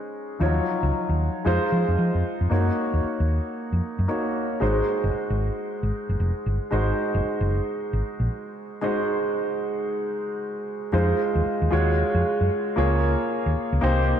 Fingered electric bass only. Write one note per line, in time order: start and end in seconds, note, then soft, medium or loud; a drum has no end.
0.41 0.59 D#2 loud
0.83 0.90 C#2 medium
0.93 muted fingered electric bass stroke soft
1.09 1.28 D#2 medium
1.46 1.57 F2 loud
1.72 1.83 F3 medium
1.88 1.96 F2 medium
1.99 2.10 F3 loud
2.15 2.22 F2 medium
2.41 2.48 F2 medium
2.51 2.70 F#2 loud
2.94 3.01 D#2 medium
3.04 muted fingered electric bass stroke soft
3.20 3.38 D#2 loud
3.72 3.80 F2 medium
3.99 4.06 F#2 medium
4.62 4.80 G#1 loud
5.04 5.11 F#1 medium
5.14 muted fingered electric bass stroke soft
5.30 5.49 G#1 medium
5.83 5.90 G#1 medium
6.09 6.17 F#1 medium
6.20 6.31 F1 medium
6.46 6.57 G1 medium
6.72 6.91 G#1 loud
7.15 7.22 F#1 loud
7.25 muted fingered electric bass stroke soft
7.41 7.59 F#1 medium
7.93 8.01 G#1 medium
8.20 8.27 A#1 medium
10.93 11.12 F2 loud
11.35 11.43 D#2 medium
11.46 muted fingered electric bass stroke soft
11.62 11.69 D#2 medium
11.72 12.02 D#2 medium
12.14 12.22 F2 medium
12.41 12.48 F#2 medium
12.78 13.15 C#2 loud
13.46 13.53 D#2 medium
13.57 muted fingered electric bass stroke soft
13.73 13.80 C#2 medium
13.83 14.12 C2 loud